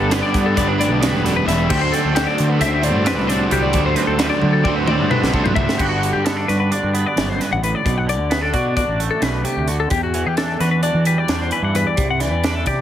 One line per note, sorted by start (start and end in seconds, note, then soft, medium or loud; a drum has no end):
0.00 0.21 G1 medium
0.00 0.79 G2 medium
0.00 0.33 B3 medium
0.00 0.11 D4 medium
0.00 0.67 D4 medium
0.00 0.12 G4 medium
0.00 0.12 A4 medium
0.00 0.12 B4 medium
0.10 2.15 D3 medium
0.10 1.45 G3 medium
0.10 0.54 B3 medium
0.10 0.56 D4 medium
0.10 0.57 G4 medium
0.10 0.22 B4 medium
0.10 0.57 B4 medium
0.10 snare loud
0.10 closed hi-hat loud
0.23 0.45 D5 medium
0.34 0.59 G2 medium
0.34 0.54 B3 medium
0.34 kick medium
0.34 closed hi-hat medium
0.46 0.57 A4 medium
0.55 0.91 G1 medium
0.55 0.99 B3 medium
0.55 0.67 B3 medium
0.55 0.81 D4 medium
0.55 0.80 G4 medium
0.55 0.77 B4 medium
0.55 0.68 D5 medium
0.55 kick medium
0.55 snare soft
0.55 closed hi-hat medium
0.67 1.70 D4 soft
0.67 0.80 B4 medium
0.78 1.24 D2 medium
0.78 1.01 D4 medium
0.78 1.02 G4 medium
0.78 1.02 B4 medium
0.78 1.02 D5 medium
0.78 closed hi-hat medium
0.91 1.13 B1 medium
1.00 1.25 G2 medium
1.00 1.45 B3 medium
1.00 1.26 D4 medium
1.00 1.25 G4 medium
1.00 1.25 B4 medium
1.00 1.22 B4 medium
1.00 snare loud
1.00 closed hi-hat loud
1.13 1.45 E1 loud
1.23 1.46 F#2 medium
1.23 1.47 D4 medium
1.23 1.47 G4 medium
1.23 1.36 A4 medium
1.23 1.47 B4 medium
1.23 snare soft
1.23 closed hi-hat medium
1.37 1.47 B4 medium
1.45 1.71 E1 medium
1.45 1.69 E2 medium
1.45 1.68 G3 medium
1.45 1.68 B3 medium
1.45 1.69 D4 loud
1.45 1.70 G4 loud
1.45 1.69 B4 loud
1.45 1.70 E5 medium
1.45 closed hi-hat medium
1.49 snare soft
1.68 3.49 D2 medium
1.68 1.91 D2 loud
1.68 2.13 D3 medium
1.68 2.13 F#3 medium
1.68 2.15 A3 medium
1.68 2.15 D4 medium
1.68 2.15 F#4 medium
1.68 1.81 G4 loud
1.68 2.16 C5 medium
1.68 kick loud
1.68 crash loud
1.81 1.93 C5 medium
1.92 2.60 C4 medium
1.92 2.15 A4 medium
1.92 snare soft
1.92 closed hi-hat medium
2.04 2.25 D2 medium
2.14 2.83 D3 medium
2.14 4.17 D3 medium
2.14 2.83 F#3 loud
2.14 2.58 A3 medium
2.14 2.60 D4 medium
2.14 2.60 F#4 loud
2.14 2.27 G4 medium
2.14 2.61 C5 loud
2.14 snare loud
2.14 closed hi-hat loud
2.27 2.50 D5 medium
2.38 2.62 D3 medium
2.38 closed hi-hat medium
2.50 2.61 B4 medium
2.59 2.95 D2 loud
2.59 2.83 A3 medium
2.59 3.72 C4 medium
2.59 2.83 D4 medium
2.59 2.81 F#4 medium
2.59 2.80 C5 medium
2.59 2.84 E5 medium
2.59 snare soft
2.59 closed hi-hat medium
2.81 3.71 A2 medium
2.81 3.03 A3 medium
2.81 3.05 D4 medium
2.81 3.05 F#4 medium
2.81 3.06 C5 medium
2.81 3.06 D5 medium
2.81 closed hi-hat medium
2.95 3.17 G2 medium
3.04 3.29 A3 medium
3.04 3.29 D4 medium
3.04 5.08 D4 medium
3.04 3.27 F#4 medium
3.04 3.29 B4 medium
3.04 3.26 C5 medium
3.04 snare loud
3.04 closed hi-hat medium
3.17 3.49 C2 medium
3.27 3.50 A3 medium
3.27 3.52 D4 medium
3.27 3.52 F#4 medium
3.27 3.52 C5 medium
3.27 3.52 D5 medium
3.27 snare soft
3.27 closed hi-hat medium
3.50 3.74 C2 medium
3.50 3.72 D2 medium
3.50 3.72 D3 loud
3.50 3.73 F#3 loud
3.50 4.89 G3 medium
3.50 3.73 A3 medium
3.50 3.74 D4 loud
3.50 3.75 F#4 loud
3.50 3.64 G4 medium
3.50 3.75 C5 loud
3.50 closed hi-hat medium
3.62 3.86 D5 medium
3.73 5.53 D2 medium
3.73 3.95 D2 medium
3.73 4.17 D3 medium
3.73 4.17 F#3 medium
3.73 4.18 A3 medium
3.73 4.19 D4 medium
3.73 4.19 F#4 medium
3.73 4.20 C5 medium
3.73 kick loud
3.73 closed hi-hat medium
3.86 3.95 C5 medium
3.95 4.64 C4 medium
3.95 4.07 B4 medium
3.95 snare soft
3.95 closed hi-hat medium
4.07 4.29 D2 medium
4.07 4.18 A4 medium
4.18 4.87 D3 medium
4.18 5.78 D3 medium
4.18 4.88 F#3 loud
4.18 4.63 A3 medium
4.18 4.64 D4 loud
4.18 4.64 F#4 medium
4.18 4.29 B4 medium
4.18 4.65 C5 medium
4.18 snare loud
4.18 closed hi-hat loud
4.30 4.53 D5 medium
4.42 4.65 D3 medium
4.42 high tom medium
4.53 4.65 A4 medium
4.64 5.00 D2 loud
4.64 4.88 A3 medium
4.64 5.76 C4 medium
4.64 4.87 D4 medium
4.64 4.86 F#4 medium
4.64 4.85 C5 medium
4.64 4.76 D5 medium
4.64 kick medium
4.76 4.87 B4 medium
4.86 5.76 A2 medium
4.86 5.09 A3 medium
4.86 5.10 D4 medium
4.86 5.11 F#4 medium
4.86 5.11 C5 medium
4.86 5.11 D5 medium
4.86 mid tom medium
5.00 5.24 G2 medium
5.09 5.35 A3 medium
5.09 5.79 D4 medium
5.09 5.34 D4 medium
5.09 5.33 F#4 medium
5.09 5.33 B4 medium
5.09 5.32 C5 medium
5.09 mid tom medium
5.23 5.54 C2 medium
5.23 snare medium
5.33 5.55 A3 medium
5.33 5.56 D4 medium
5.33 5.56 F#4 medium
5.33 5.44 A4 medium
5.33 5.57 C5 medium
5.33 kick medium
5.44 5.56 B4 medium
5.44 floor tom medium
5.54 5.67 C2 medium
5.54 5.78 D2 medium
5.54 5.77 D3 loud
5.54 5.78 F#3 medium
5.54 5.79 G3 soft
5.54 5.78 A3 medium
5.54 5.78 D4 medium
5.54 5.79 F#4 medium
5.54 5.79 C5 loud
5.54 5.79 E5 medium
5.54 kick loud
5.69 snare medium
5.78 6.11 G1 medium
5.78 7.38 G2 medium
5.78 6.00 D3 soft
5.78 6.25 B3 medium
5.78 6.24 D4 medium
5.78 6.49 F#4 medium
5.78 5.89 G4 medium
5.78 kick medium
5.78 crash medium
5.89 6.13 F#4 medium
6.02 8.05 D3 medium
6.02 closed hi-hat medium
6.13 6.46 G2 medium
6.13 6.24 G4 medium
6.24 6.36 B3 medium
6.24 6.48 A4 medium
6.24 snare loud
6.24 closed hi-hat medium
6.36 6.71 D4 medium
6.48 6.69 G2 medium
6.48 8.53 F#4 medium
6.48 6.59 B4 medium
6.48 snare soft
6.48 closed hi-hat medium
6.60 6.71 B4 medium
6.71 8.30 D4 medium
6.71 6.95 D5 medium
6.71 closed hi-hat medium
6.83 7.04 G2 medium
6.94 8.30 B3 medium
6.94 7.06 B4 medium
6.94 closed hi-hat soft
7.06 7.29 D5 medium
7.16 7.38 G1 medium
7.16 7.39 F#2 medium
7.16 snare loud
7.16 closed hi-hat medium
7.29 7.41 C5 medium
7.39 7.62 G2 medium
7.39 7.52 B4 medium
7.39 snare soft
7.39 closed hi-hat medium
7.52 7.73 A1 medium
7.52 7.63 F#5 medium
7.62 7.84 A2 soft
7.62 7.75 B4 medium
7.62 closed hi-hat medium
7.75 7.98 D5 medium
7.85 8.19 B1 medium
7.85 8.08 B2 medium
7.85 kick loud
7.85 closed hi-hat medium
7.98 8.09 F#5 medium
8.06 9.67 D3 medium
8.06 8.32 D5 medium
8.06 closed hi-hat medium
8.19 8.51 D2 medium
8.30 8.41 B3 medium
8.30 8.42 B4 medium
8.30 snare loud
8.30 closed hi-hat medium
8.41 8.75 D4 medium
8.41 8.54 A4 medium
8.53 8.75 B2 medium
8.53 9.88 F#4 medium
8.53 8.75 D5 medium
8.53 kick medium
8.53 closed hi-hat medium
8.76 9.94 D4 medium
8.76 9.00 D5 medium
8.76 kick medium
8.76 closed hi-hat medium
8.87 9.09 A1 medium
9.00 9.89 A3 medium
9.00 closed hi-hat medium
9.11 9.22 A4 medium
9.21 9.43 B1 medium
9.21 9.44 B2 medium
9.21 9.45 B4 medium
9.21 snare loud
9.21 closed hi-hat medium
9.44 9.68 C3 medium
9.44 9.68 G4 medium
9.44 closed hi-hat medium
9.56 9.88 D2 medium
9.68 9.91 D3 medium
9.68 9.80 F#4 medium
9.68 closed hi-hat medium
9.80 9.90 A4 medium
9.90 11.72 E2 medium
9.90 10.23 E2 medium
9.90 10.02 G4 medium
9.90 kick loud
9.90 closed hi-hat medium
10.03 10.27 F#4 medium
10.14 11.50 E3 medium
10.14 closed hi-hat medium
10.26 10.57 E3 medium
10.26 10.37 G4 medium
10.37 10.83 D4 medium
10.37 10.60 A4 medium
10.37 snare loud
10.37 closed hi-hat medium
10.60 10.81 E3 medium
10.60 11.95 F#4 medium
10.60 10.70 B4 medium
10.60 snare soft
10.60 closed hi-hat medium
10.71 10.83 B4 medium
10.83 11.29 D4 medium
10.83 11.06 D5 medium
10.83 closed hi-hat medium
10.94 11.15 E3 medium
11.05 12.81 G3 medium
11.05 11.18 B4 medium
11.05 closed hi-hat medium
11.18 11.41 D5 medium
11.28 11.50 E2 medium
11.28 12.00 D4 soft
11.28 snare loud
11.28 closed hi-hat medium
11.41 11.52 C5 medium
11.51 11.95 E3 medium
11.51 11.64 B4 medium
11.51 closed hi-hat soft
11.62 11.84 G2 medium
11.62 11.75 F#5 medium
11.74 11.94 E2 medium
11.74 11.87 B4 medium
11.74 closed hi-hat medium
11.87 12.09 D5 medium
11.97 12.31 C2 loud
11.97 12.20 C3 medium
11.97 kick loud
11.97 closed hi-hat medium
12.11 12.21 F#5 medium
12.20 12.81 E3 medium
12.20 12.45 D5 medium
12.20 snare soft
12.20 closed hi-hat medium
12.31 12.63 E2 medium
12.44 12.81 D4 medium
12.44 12.55 B4 medium
12.44 snare loud
12.44 closed hi-hat medium
12.55 12.66 A4 medium
12.66 12.81 C3 medium
12.66 12.81 G4 soft
12.66 12.81 D5 medium
12.66 kick medium
12.66 snare soft
12.66 closed hi-hat medium